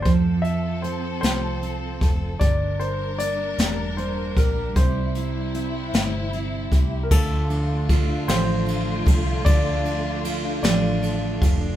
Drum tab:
CC |------|------|------|x-----|
RD |------|------|------|-xxxxx|
HH |xxxxxx|xxxxxx|xxxxxx|------|
SD |---o--|---o--|---o--|---o--|
BD |o----o|o----o|o----o|o-o--o|

CC |------|
RD |xxxxxx|
HH |------|
SD |---o--|
BD |o----o|